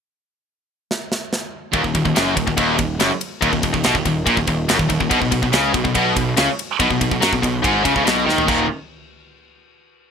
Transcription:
<<
  \new Staff \with { instrumentName = "Distorted electric guitar" } { \clef bass \time 4/4 \key ees \minor \tempo 4 = 142 r1 | ees,16 ees,16 ees,16 ees,16 ges,8 ees,16 ees,16 ees,8 ees,8 ges,16 r8. | ees,16 ees,16 ees,16 ees,16 ces16 ees,16 ees,8 bes,16 ees,16 ees,8 ges,16 ees,16 ees,16 ees,16 | b,16 b,16 b,16 b,16 des8 b,16 b,16 b,8 b,8 des16 r8. |
b,16 b,16 b,16 b,16 fis16 b,16 b,8 aes,8 des16 des16 b,8 ees8 | <ees, bes, ees>8 r2. r8 | }
  \new Staff \with { instrumentName = "Distorted electric guitar" } { \clef bass \time 4/4 \key ees \minor r1 | ees,16 ees,16 ees,16 ees,16 ges,8 ees,16 ees,16 ees,8 ees,8 ges,16 r8. | ees,16 ees,16 ees,16 ees,16 ces16 ees,16 ees,8 bes,16 ees,16 ees,8 ges,16 ees,16 ees,16 ees,16 | b,16 b,16 b,16 b,16 des8 b,16 b,16 b,8 b,8 des16 r8. |
b,16 b,16 b,16 b,16 fis16 b,16 b,8 aes,8 des16 des16 b,8 ees8 | <ees, bes, ees>8 r2. r8 | }
  \new Staff \with { instrumentName = "Distorted electric guitar" } { \clef bass \time 4/4 \key ees \minor r1 | ees,16 ees,16 ees,16 ees,16 ges,8 ees,16 ees,16 ees,8 ees,8 ges,16 r8. | ees,16 ees,16 ees,16 ees,16 ces16 ees,16 ees,8 bes,16 ees,16 ees,8 ges,16 ees,16 ees,16 ees,16 | b,16 b,16 b,16 b,16 des8 b,16 b,16 b,8 b,8 des16 r8. |
b,16 b,16 b,16 b,16 fis16 b,16 b,8 aes,8 des16 des16 b,8 ees8 | <ees, bes, ees>8 r2. r8 | }
  \new Staff \with { instrumentName = "Picked electric bass" } { \clef bass \time 4/4 \key ees \minor r1 | ees,,16 ees,,16 ees,,16 ees,,16 ges,,8 ees,,16 ees,,16 ees,,8 ees,,8 ges,,16 r8. | ees,,16 ees,,16 ees,,16 ees,,16 ces,16 ees,,16 ees,,8 bes,,16 ees,,16 ees,,8 ges,,16 ees,,16 ees,,16 ees,,16 | b,,16 b,,16 b,,16 b,,16 des,8 b,,16 b,,16 b,,8 b,,8 des,16 r8. |
b,,16 b,,16 b,,16 b,,16 fis,16 b,,16 b,,8 aes,,8 des,16 des,16 b,,8 ees,8 | ees,,8 r2. r8 | }
  \new DrumStaff \with { instrumentName = "Drums" } \drummode { \time 4/4 r4 r4 sn8 sn8 sn4 | <bd cymr>16 bd16 <bd cymr>16 bd16 <cymr sn>8 <bd cymr>16 bd16 <bd cymr>8 <bd cymr>8 <cymr sn>8 cymr8 | <bd cymr>16 bd16 <bd cymr>16 bd16 <cymr sn>16 bd16 <bd cymr>8 <bd cymr>16 bd16 <bd cymr>8 <cymr sn>16 bd16 <bd cymr>16 bd16 | <bd cymr>16 bd16 <bd cymr>16 bd16 <cymr sn>8 <bd cymr>16 bd16 <bd cymr>8 <bd cymr>8 <cymr sn>8 cymr8 |
<bd cymr>16 bd16 <bd cymr>16 bd16 <cymr sn>16 bd16 <bd cymr>8 <bd cymr>8 <bd cymr>16 bd16 <cymr sn>8 sn16 tomfh16 | <cymc bd>4 r4 r4 r4 | }
>>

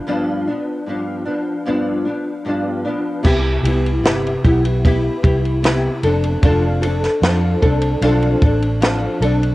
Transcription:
<<
  \new Staff \with { instrumentName = "Nylon-string guitar" } { \time 4/4 \key c \major \tempo 4 = 75 <g, f b d'>8 <f b d'>8 <g, f b d'>8 <f b d'>8 <g, f b d'>8 <f b d'>8 <g, f b d'>8 <f b d'>8 | <c b e' g'>8 <b e' g'>8 <c b e' g'>8 <b e' g'>8 <b e' g'>8 <b e' g'>8 <c b e' g'>8 <c' d' a'>8 | <f c' d' a'>8 <c' d' a'>8 <f c' d' a'>8 <c' d' a'>8 <f c' d' a'>8 <c' d' a'>8 <f c' d' a'>8 <c' d' a'>8 | }
  \new Staff \with { instrumentName = "Fingered electric bass" } { \clef bass \time 4/4 \key c \major r1 | c,8 c,8 g,,8 b,,4 c,4 f,,8 | f,,4 f,8 c,8 b,,8 a,,4 b,,8 | }
  \new DrumStaff \with { instrumentName = "Drums" } \drummode { \time 4/4 r4 r4 r4 r4 | <cymc bd>8 cymr16 cymr16 <cymr sn>16 cymr16 <bd cymr>16 cymr16 <bd cymr>8 <bd cymr>16 cymr16 <cymr sn>8 cymr16 cymr16 | <bd cymr>8 cymr16 <cymr sn>16 <cymr sn>8 <bd cymr>16 cymr16 cymr16 cymr16 <bd cymr>16 cymr16 <cymr sn>8 cymr16 cymr16 | }
>>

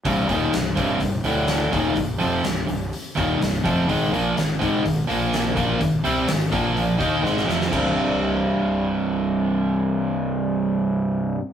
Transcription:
<<
  \new Staff \with { instrumentName = "Overdriven electric guitar" } { \clef bass \time 4/4 \key c \minor \tempo 4 = 125 <c, g, c>8 <ees, bes, ees>8 <c, g,>8 <c, g, c>8 <c, g,>8 <d, a, d>4 <ees, bes, ees>8 | <c, g,>8 <f, c f>8 <c, g,>8 <c, g,>8 r8 <ees, bes, ees>8 <c, g,>8 <f, c f>8 | <aes, ees aes>8 <bes, f bes>8 <aes, ees>8 <aes, ees aes>8 <aes, ees>8 <bes, f bes>4 <bes, f bes>8 | <aes, ees>8 <c g c'>8 <aes, ees>8 <bes, f bes>4 <ees bes ees'>8 <aes, ees aes>8 <f, c f>8 |
<c, g, c>1~ | <c, g, c>1 | }
  \new Staff \with { instrumentName = "Overdriven electric guitar" } { \clef bass \time 4/4 \key c \minor <c, g, c>8 <ees, bes, ees>8 <c, g,>8 <c, g, c>8 <c, g,>8 <d, a, d>4 <ees, bes, ees>8 | <c, g,>8 <f, c f>8 <c, g,>8 <c, g,>8 r8 <ees, bes, ees>8 <c, g,>8 <f, c f>8 | <aes, ees aes>8 <bes, f bes>8 <aes, ees>8 <aes, ees aes>8 <aes, ees>8 <bes, f bes>4 <bes, f bes>8 | <aes, ees>8 <c g c'>8 <aes, ees>8 <bes, f bes>4 <ees bes ees'>8 <aes, ees aes>8 <f, c f>8 |
<c, g, c>1~ | <c, g, c>1 | }
  \new Staff \with { instrumentName = "Fingered electric bass" } { \clef bass \time 4/4 \key c \minor c,,8 ees,,8 c,,8 c,,8 c,,8 d,,4 ees,,8 | c,,8 f,,8 c,,8 c,,8 r8 ees,,8 c,,8 f,,8 | aes,,8 bes,,8 aes,,8 aes,,8 aes,,8 bes,,4 bes,,8 | aes,,8 c,8 aes,,8 bes,,4 ees,8 aes,,8 f,,8 |
c,,1~ | c,,1 | }
  \new DrumStaff \with { instrumentName = "Drums" } \drummode { \time 4/4 <hho bd>8 <hho bd>8 <hho sn>8 <hho bd>8 <hho bd>8 hho8 <hho sn>8 <hho bd>8 | <hho bd>8 hho8 <hho sn>8 hho8 hho8 <hho bd>8 <hho sn>8 <hho bd>8 | <hho bd>8 hho8 <hho sn>8 <hho bd>8 <hho bd>8 hho8 <hho sn>8 <hho bd>8 | <hho bd>8 hho8 <hho sn>8 <hho bd>8 hho8 <hho bd>8 sn16 sn16 sn16 sn16 |
<cymc bd tomfh>4 r4 r4 r4 | r4 r4 r4 r4 | }
>>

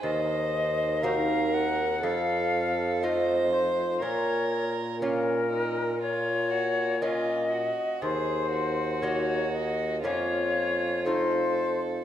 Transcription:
<<
  \new Staff \with { instrumentName = "Flute" } { \time 4/4 \key bes \minor \tempo 4 = 60 ees''4 f''8 ges''8 f''4 ees''8 c''8 | des''8 r8 bes'4 des''4 ees''4 | c''4 des''8 ees''8 des''4 c''8 r8 | }
  \new Staff \with { instrumentName = "Violin" } { \time 4/4 \key bes \minor c''4 bes'4 a'4 c''4 | bes'4 des'8 ees'8 f'8 ges'8 f'8 ges'8 | aes'8 ges'4. f'4 a'4 | }
  \new Staff \with { instrumentName = "Lute" } { \time 4/4 \key bes \minor r4 <c' ees' ges'>4 r4 <a ees' f'>4 | r4 <bes des' f'>4 r4 <bes des' f'>4 | r4 <bes ees' ges'>4 <bes des' f'>4 <a ees' f'>4 | }
  \new Staff \with { instrumentName = "Lute" } { \clef bass \time 4/4 \key bes \minor ees,2 f,2 | bes,2.~ bes,8 r8 | ees,2 f,2 | }
  \new Staff \with { instrumentName = "Bassoon" } { \clef bass \time 4/4 \key bes \minor ees,2 f,2 | bes,2.~ bes,8 r8 | ees,2 f,2 | }
>>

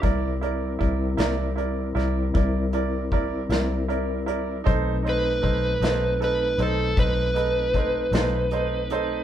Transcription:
<<
  \new Staff \with { instrumentName = "Electric slide guitar" } { \time 12/8 \key c \lydian \tempo 4. = 52 r1. | r8 b'4. b'8 a'8 b'2. | }
  \new Staff \with { instrumentName = "Upright piano" } { \time 12/8 \key c \lydian <e' bes' d''>8 <e' bes' d''>8 <e' bes' d''>8 <e' bes' d''>8 <e' bes' d''>8 <e' bes' d''>8 <e' bes' d''>8 <e' bes' d''>8 <e' bes' d''>8 <e' bes' d''>8 <e' bes' d''>8 <e' bes' d''>8 | <dis' a' c''>8 <dis' a' c''>8 <dis' a' c''>8 <dis' a' c''>8 <dis' a' b'>8 <dis' a' c''>8 <dis' a' c''>8 <dis' a' b'>8 <dis' a' c''>8 <dis' a' c''>8 <dis' a' c''>8 <dis' a' c''>8 | }
  \new Staff \with { instrumentName = "Tonewheel organ" } { \time 12/8 \key c \lydian <g c' e' bes'>1. | <a c' dis' b'>1. | }
  \new Staff \with { instrumentName = "Fingered electric bass" } { \clef bass \time 12/8 \key c \lydian c,4 c,8 c,4 c,8 c,4. c,4. | b,,4 b,,8 b,,4 b,,8 b,,4. b,,4. | }
  \new DrumStaff \with { instrumentName = "Drums" } \drummode { \time 12/8 <hh bd>8 hh8 <hh bd>8 <hh sn>8 hh8 <hh sn>8 <hh bd>8 hh8 <hh bd>8 <hh sn>8 hh8 hh8 | <hh bd>8 hh8 <hh bd>8 <hh sn>8 hh8 hh8 <hh bd>8 hh8 <hh bd>8 <hh sn>8 hh8 hh8 | }
>>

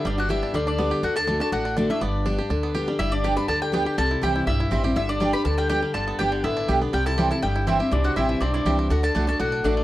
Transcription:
<<
  \new Staff \with { instrumentName = "Mandolin" } { \time 4/4 \key g \major \tempo 4 = 244 d''8 fis''8 e''4 d''8 d''4 r8 | fis''8 a''4 a''8 fis''4 d''8 e''8 | d''2. r4 | e''8 d''4 b''8 a''8 g''8 g''4 |
a''4 g''4 e''4. r8 | e''8 d''4 b''8 a''8 g''8 g''4 | a''4 g''4 e''4. r8 | g''8 a''4 a''8 g''4 e''4 |
d''8 fis''8 e''4 d''8 d''4 r8 | fis''8 a''4 a''8 fis''4 d''4 | }
  \new Staff \with { instrumentName = "Mandolin" } { \time 4/4 \key g \major r1 | r1 | r1 | r4 <b g' d'' g''>8 r4. <b g' d'' g''>8 r8 |
r4 <c' e' c'' g''>8 r4. <c' e' c'' g''>8 r8 | r4 <b g' d'' g''>8 r4. <b g' d'' g''>8 r8 | r4 <b g' d'' g''>8 r4. <b g' d'' g''>8 r8 | r4 <c' e' c'' g''>8 r4. <c' e' c'' g''>8 r8 |
r4 <c' e' c'' g''>8 r4. <c' e' c'' g''>8 r8 | r4 <a fis' d'' fis''>8 r4. <a fis' d'' fis''>8 r8 | }
  \new Staff \with { instrumentName = "Resonator guitar played with a steel bar" } { \time 4/4 \key g \major d'8 fis'8 e'4 d'8 d'4 r8 | fis'8 a'4 a'8 fis'4 d'8 e'8 | d'2. r4 | e'8 d'4 b'8 a'8 g'8 g'4 |
a'4 g'4 e'4. r8 | e'8 d'4 b'8 a'8 g'8 g'4 | a'4 g'4 e'4. r8 | g'8 a'4 a'8 g'4 e'4 |
d'8 fis'8 e'4 d'8 d'4 r8 | fis'8 a'4 a'8 fis'4 d'4 | }
  \new Staff \with { instrumentName = "Five-string banjo" } { \time 4/4 \key g \major <g b g'>8 d'8 g'8 d'8 g8 d'8 b8 g'8 | d'8 d'8 d'8 d'8 d'8 d'8 d'8 a8 | b4 d'8 g'8 d'8 b8 g'8 g8 | g4 g'8 d'8 g8 d'8 b8 g'8 |
g8 e'8 g'8 e'8 g8 e'8 c'8 g'8 | d8 d'8 g8 g'8 d'8 g8 g'8 g8 | d8 b8 d'8 d8 b8 d'8 g'8 b8 | g8 e'8 g'8 e'8 g8 e'8 c'8 g'8 |
e8 c'8 e'8 e8 c'8 e'8 g'8 c'8 | d'8 d'8 d'8 d'8 d'8 d'8 d'8 a8 | }
  \new Staff \with { instrumentName = "Steel-string acoustic guitar" } { \time 4/4 \key g \major << { r4 <g b d' g'>4 r4 <g b d' g'>4 | r4 <d a d' fis'>8 <d' fis'>8 r4 <d a d' fis'>8 <d' fis'>8 | r4 <g b d' g'>8 <d' g'>8 r4 <g b d' g'>8 <d' g'>8 | r4 <g b d' g'>8 <d' g'>8 r4 <g b d' g'>8 <d' g'>8 |
r4 <e g c' e'>4 r4 <e g c' e'>8 <c' e'>8 | r4 <g b d' g'>8 <d' g'>8 r4 <g b d' g'>8 <d' g'>8 | r4 <g b d' g'>4 r4 <g b d' g'>8 <d' g'>8 | r4 <e g c' e'>8 <c' e'>8 r4 <e g c' e'>8 <c' e'>8 |
r4 <e g c' e'>4 r4 <e g c' e'>4 | r4 <d a d' fis'>8 <d' fis'>8 r4 <d a d' fis'>4 | } \\ { g,2 d2 | d2 a,2 | g,2 d2 | g,2 d2 |
c2 g,2 | g,2 d2 | g,2 d2 | c2 g,2 |
c2 g,2 | d2 a,2 | } >> }
  \new Staff \with { instrumentName = "Upright bass" } { \clef bass \time 4/4 \key g \major g,,2 d,2 | d,2 a,,2 | g,,2 d,2 | g,,2 d,2 |
c,4 c,4 b,,4 a,,4 | g,,2 d,2 | g,,4 g,,4 a,,4 b,,4 | c,2 g,,2 |
c,4 a,,4 b,,4 c,4 | d,4 c,4 b,,4 a,,4 | }
>>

